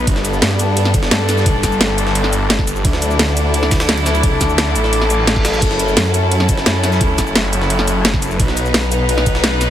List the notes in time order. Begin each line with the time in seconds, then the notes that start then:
Already playing: B3
0.07 G1 G3 D4 A4, kick, closed hi-hat, ride
0.16 snare
0.25 closed hi-hat, ride, shaker
0.33 shaker
0.42 G2, snare, closed hi-hat, open hi-hat
0.51 snare
0.59 closed hi-hat, ride, shaker
0.77 closed hi-hat, ride
0.85 snare, ride
0.94 G1, kick, closed hi-hat, ride, shaker
1.03 snare
1.11 G2, snare, closed hi-hat, ride
1.29 snare, closed hi-hat, ride, shaker
1.37 snare, shaker
1.46 kick, closed hi-hat, ride
1.63 G1, kick, snare, closed hi-hat, ride, shaker
1.72 shaker
1.81 snare, closed hi-hat, ride
1.98 closed hi-hat, ride, shaker
2.07 snare
2.15 closed hi-hat, ride
2.24 snare
2.33 closed hi-hat, ride, shaker
2.50 G1, snare, closed hi-hat, ride
2.59 kick, snare
2.67 closed hi-hat, ride, shaker
2.76 shaker
2.85 D2 F#3 D4 E4 A4, kick, closed hi-hat, ride
2.93 snare
3.02 closed hi-hat, ride, shaker
3.11 shaker
3.19 D2, snare, closed hi-hat, open hi-hat
3.28 snare
3.37 closed hi-hat, ride, shaker
3.54 closed hi-hat, ride
3.63 snare, ride
3.71 D2, kick, snare, closed hi-hat, open hi-hat, shaker
3.80 snare, open hi-hat
3.89 D2, snare, closed hi-hat, ride
3.97 ride
4.06 snare, closed hi-hat, shaker
4.15 ride, shaker
4.23 kick, closed hi-hat, ride
4.41 D2, kick, snare, closed hi-hat, ride, shaker
4.49 shaker
4.58 snare, closed hi-hat, ride
4.75 A1, closed hi-hat, ride, shaker
4.84 snare
4.93 closed hi-hat, ride, reverse cymbal
5.01 snare
5.10 closed hi-hat, shaker
5.27 snare, closed hi-hat
5.36 kick, snare
5.45 snare, closed hi-hat, open hi-hat, shaker
5.53 shaker
5.62 F#1 C#4 E4, kick, closed hi-hat, crash, ride
5.71 snare
5.79 closed hi-hat, ride, shaker
5.88 shaker
5.97 F#2, snare, closed hi-hat, open hi-hat
6.05 snare
6.14 closed hi-hat, ride, shaker
6.31 closed hi-hat, ride
6.40 snare, ride
6.49 F#1, kick, closed hi-hat, ride, shaker
6.57 snare
6.66 F#2, snare, closed hi-hat, ride
6.83 snare, closed hi-hat, ride, shaker
6.92 snare, shaker
7.01 kick, closed hi-hat, ride
7.18 F#1, kick, snare, closed hi-hat, ride, shaker
7.27 shaker
7.35 snare, closed hi-hat, ride
7.53 closed hi-hat, ride, shaker
7.62 snare
7.70 closed hi-hat, ride
7.79 snare
7.87 closed hi-hat, ride, shaker
8.05 F#1, snare, closed hi-hat, ride
8.14 kick, snare
8.22 closed hi-hat, ride, shaker
8.31 shaker
8.40 B1 B3 D#4 B4, kick, closed hi-hat, ride
8.48 snare
8.57 closed hi-hat, ride, shaker
8.66 shaker
8.74 B1, snare, closed hi-hat, open hi-hat
8.83 snare
8.92 closed hi-hat, ride, shaker
9.09 closed hi-hat, ride
9.18 snare, ride
9.26 B1, kick, closed hi-hat, ride, shaker
9.35 snare
9.44 B1, snare, closed hi-hat, ride
9.61 snare, closed hi-hat, ride, shaker